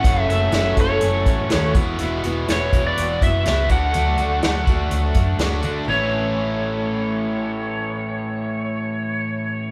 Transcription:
<<
  \new Staff \with { instrumentName = "Electric slide guitar" } { \time 4/4 \key a \major \tempo 4 = 123 fis''8 e''4 cis''2 r8 | r4 cis''8. d''8. e''4 fis''8~ | fis''2. r4 | cis''1~ |
cis''1 | }
  \new Staff \with { instrumentName = "Tonewheel organ" } { \time 4/4 \key a \major <cis' e' fis' a'>2.~ <cis' e' fis' a'>8 r8 | r1 | r1 | r1 |
r1 | }
  \new Staff \with { instrumentName = "Twelve-string acoustic guitar" } { \time 4/4 \key a \major <fis, cis e a cis' a'>8 <e a cis' a'>8 <fis, cis e a cis' a'>8 <e a cis' a'>8 <e a cis' a'>8 <e a cis' a'>8 <fis, cis e a cis' a'>8 <b e' fis'>8 | <e b e' fis'>8 <b e' fis'>8 <e b e' fis'>8 <b e' fis'>8 <e b e' fis'>8 <b e' fis'>8 <e b e' fis'>8 <a d' fis'>8 | <d fis a d' fis'>8 <a d' fis'>8 <d fis a d' fis'>8 <a d' fis'>8 <fis a d' fis'>8 <a d' fis'>8 <d fis a d' fis'>8 <a d' fis'>8 | <a cis' e' b'>1~ |
<a cis' e' b'>1 | }
  \new Staff \with { instrumentName = "Overdriven electric guitar" } { \time 4/4 \key a \major <fis, cis fis a cis' fis'>8 <fis a cis' fis'>8 <fis, cis fis a cis' fis'>8 <fis a cis' fis'>4. <fis a cis' fis'>8 <e, b, e b e' fis'>8 | <e, b, e b e' fis'>8 <e b e' fis'>8 <e, b, e b e' fis'>8 <e b e' fis'>4. <e b e' fis'>8 <d a d' fis'>8 | <d a d' fis'>8 <a d' fis'>8 <d a d' fis'>8 <a d' fis'>4. <d a d' fis'>8 <a d' fis'>8 | <a, e a cis' e'>1~ |
<a, e a cis' e'>1 | }
  \new Staff \with { instrumentName = "Fingered electric bass" } { \clef bass \time 4/4 \key a \major fis,,8 fis,,8 fis,,8 fis,,8 fis,,8 a,,8 dis,8 e,,8 | e,,8 e,,8 e,,8 e,,8 e,,8 fis,,8 cis,8 d,8 | d,8 d,8 d,8 d,8 d,8 fis,8 d,8 d8 | a,,1~ |
a,,1 | }
  \new DrumStaff \with { instrumentName = "Drums" } \drummode { \time 4/4 <hh bd>8 hh8 <hh sn>8 <hh bd>8 hh8 <hh bd>8 <hh sn>8 <hh bd>8 | hh8 hh8 <hh sn>8 <hh bd>8 hh8 <hh bd>8 <hh sn>8 <hh bd>8 | hh8 hh8 <hh sn>8 <hh bd>8 hh8 <hh bd>8 <hh sn>8 hh8 | r4 r4 r4 r4 |
r4 r4 r4 r4 | }
>>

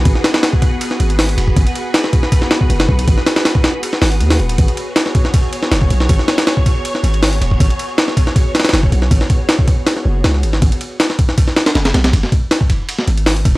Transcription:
<<
  \new Staff \with { instrumentName = "String machine" } { \time 4/4 \key gis \minor \tempo 4 = 159 << { b'1~ | b'1~ | b'1 | cis''1~ |
cis''1~ | cis''1~ | cis''1 | r1 |
r1 | } \\ { <b fis' gis'>1~ | <b fis' gis'>1~ | <b fis' gis'>1~ | <b fis' gis'>1~ |
<b fis' gis'>1~ | <b fis' gis'>1~ | <b fis' gis'>1 | r1 |
r1 | } >> }
  \new Staff \with { instrumentName = "808-style bass" } { \clef bass \time 4/4 \key gis \minor gis,,8 r2 gis,,4 dis,,8 | gis,,8 r2 r8 fis,,8 b,,8 | gis,,8 r2 gis,,8 dis,8 dis,,8 | gis,,8 r2 r8 fis,,8 b,,8 |
gis,,8 r2 gis,,4 dis,,8 | gis,,8 r2 r8 fis,,8 b,,8 | gis,,8 r2 fis,,8 cis,8 gis,,8 | gis,,8 r2 r8 fis,,8 b,,8 |
gis,,8 r2 gis,,4 dis,,8 | }
  \new DrumStaff \with { instrumentName = "Drums" } \drummode { \time 4/4 <bd cymr>16 sn16 <cymr sn>16 <cymr sn>16 <cymr sn>16 bd16 <bd cymr>8 cymr16 sn16 cymr16 cymr16 <hho sn>16 cymr16 cymr16 bd16 | <bd cymr>16 cymr16 cymr8 <cymr sn>16 sn16 <bd cymr>16 sn16 <bd cymr>16 sn16 <cymr sn>16 bd16 cymr16 <cymr sn>16 bd16 cymr16 | <bd cymr>16 sn16 <cymr sn>16 <cymr sn>16 <cymr sn>16 bd16 <cymr sn>8 cymr16 sn16 <hho sn>16 cymr16 cymr16 <hho sn>16 cymr16 cymr16 | <bd cymr>16 cymr16 cymr8 <cymr sn>16 sn16 <bd cymr>16 sn16 <bd cymr>8 cymr16 sn16 <cymr sn>16 bd16 cymr16 sn16 |
<bd cymr>16 sn16 <cymr sn>16 <cymr sn>16 <cymr sn>16 bd16 <bd cymr>8 cymr16 sn16 cymr16 cymr16 <hho sn>16 cymr16 cymr16 bd16 | <bd cymr>16 cymr16 cymr8 <cymr sn>16 sn16 <bd cymr>16 sn16 <bd cymr>8 <cymr sn>32 <cymr sn>32 <cymr sn>32 <cymr sn>32 <cymr sn>16 bd16 cymr16 sn16 | <bd cymr>16 sn16 <bd cymr>8 <cymr sn>16 bd16 <bd cymr>8 <cymr sn>16 sn8. <cymr sn>16 sn16 cymr16 sn16 | <bd cymr>16 cymr16 cymr8 <cymr sn>16 sn16 <bd cymr>16 sn16 <bd cymr>16 sn16 <cymr sn>16 <cymr sn>16 <cymr sn>16 <cymr sn>16 <cymr sn>16 <cymr sn>16 |
<bd cymr>16 sn16 <bd cymr>8 <cymr sn>16 bd16 <bd cymr>8 cymr16 sn16 cymr16 cymr16 <hho sn>16 cymr16 <bd cymr>8 | }
>>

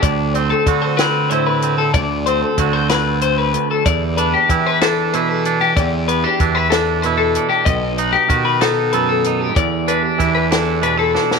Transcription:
<<
  \new Staff \with { instrumentName = "Clean electric guitar" } { \time 6/8 \key e \minor \tempo 4. = 63 d''8 c''16 a'8 c''16 b'8 c''16 b'8 a'16 | d''8 c''16 a'8 c''16 b'8 c''16 b'8 a'16 | d''8 b'16 g'8 b'16 a'8 b'16 a'8 g'16 | d''8 b'16 g'8 b'16 a'8 b'16 a'8 g'16 |
dis''8 b'16 g'8 b'16 a'8 b'16 a'8 g'16 | d''8 b'16 g'8 b'16 a'8 b'16 a'8 g'16 | }
  \new Staff \with { instrumentName = "Clean electric guitar" } { \time 6/8 \key e \minor << { r8 c'8 fis'8 c'8 e'8 c'8 | r8 c'8 fis'2 | r8 d'8 e'8 d'8 e'8 d'8 | r8 b16 d'16 d'16 e'16 d'8 e'8 d'8 |
r8 dis'8 fis'8 dis'8 a'8 dis'8 | r8 d'8 e'8 d'8 d'16 e'16 d'8 | } \\ { d,4 d4 a,4 | d,4 d4. d,8 | e,4 e4 b,4 | e,4 e4 b,4 |
b,4 dis4 fis,4 | e,4 e4 b,4 | } >> }
  \new Staff \with { instrumentName = "Fingered electric bass" } { \clef bass \time 6/8 \key e \minor d,4 d2 | d,4 d,2 | e,4 e2 | e,4 e,2 |
b,,4 b,2 | e,4 e,2 | }
  \new DrumStaff \with { instrumentName = "Drums" } \drummode { \time 6/8 <hh bd>8 hh8 <hh bd>8 <hh sn>8 hh8 hh8 | <hh bd>8 hh8 <hh bd>8 <hh sn>8 hh8 hh8 | <hh bd>8 hh8 <hh bd>8 <hh sn>8 hh8 hh8 | <hh bd>8 hh8 <hh bd>8 <hh sn>8 hh8 hh8 |
<hh bd>8 hh8 <hh bd>8 <hh sn>8 hh8 hh8 | <hh bd>8 hh8 <hh bd>8 <hh sn>8 hh8 sn16 sn16 | }
>>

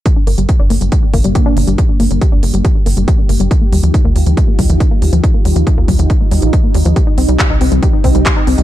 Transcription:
<<
  \new Staff \with { instrumentName = "Analog synth pad" } { \time 4/4 \key g \minor \tempo 4 = 139 << { g'1~ | g'1~ | g'1~ | g'1 |
g'1 | } \\ { <bes d'>1~ | <bes d'>1 | <ees' f'>1~ | <ees' f'>1 |
c'1 | } >> }
  \new Staff \with { instrumentName = "Synth pluck" } { \time 4/4 \key g \minor g'16 d'16 bes16 g16 g'16 d'16 bes16 g16 g'16 d'16 bes16 g16 g'16 d'16 bes16 g16 | g'16 d'16 bes16 g16 g'16 d'16 bes16 g16 g'16 d'16 bes16 g16 g'16 d'16 bes16 g16 | ees'16 bes16 g16 f16 ees'16 bes16 g16 f16 ees'16 bes16 g16 f16 ees'16 bes16 g16 f16 | ees'16 bes16 g16 f16 ees'16 bes16 g16 f16 ees'16 bes16 g16 f16 ees'16 bes16 g16 f16 |
g'16 ees'16 c'16 g16 g'16 ees'16 c'16 g16 g'16 ees'16 c'16 g16 g'16 ees'16 c'16 g16 | }
  \new Staff \with { instrumentName = "Analog synth bass" } { \clef bass \time 4/4 \key g \minor r8 g,,16 g,,16 r16 g,,16 g,,16 g,,16 r8 g,,16 g,,16 r8 g,,16 g,,16 | r8 g,,16 g,,16 r16 g,,16 g,,16 g,,16 r8 g,,16 g,,16 r8 g,,16 g,,16 | r8 ees,16 ees,16 r16 ees,16 ees,16 ees,16 r8 ees,16 ees,16 r8 ees,16 ees,16 | r8 ees,16 ees,16 r16 ees,16 ees,16 ees,16 r8 ees,16 bes,,16 r8 ees,16 ees,16 |
r8 c,16 c,16 r16 c,16 c,16 c,16 r8 c,16 c,16 r8 c,16 c,16 | }
  \new DrumStaff \with { instrumentName = "Drums" } \drummode { \time 4/4 <hh bd>8 hho16 hh16 <hh bd>8 hho16 hh16 <hh bd>8 <hho bd>16 hh16 <hh bd>8 hho16 hh16 | <hh bd>8 hho16 hh16 <hh bd>8 hho16 hh16 <hh bd>8 hho16 hh16 <hh bd>8 hho16 hh16 | <hh bd>8 hho16 hh16 <hh bd>8 hho16 hh16 <hh bd>8 <hho bd>16 hh16 <hh bd>8 hho16 hh16 | <hh bd>8 hho16 hh16 <hh bd>8 <hho bd>16 hh16 <hh bd>8 hho16 hh16 <hh bd>8 hho16 hh16 |
<hh bd>8 hho16 hh16 <hc hh bd>8 hho16 hh16 <hh bd>8 <hho bd>16 hh16 <hc hh bd>8 hho16 hh16 | }
>>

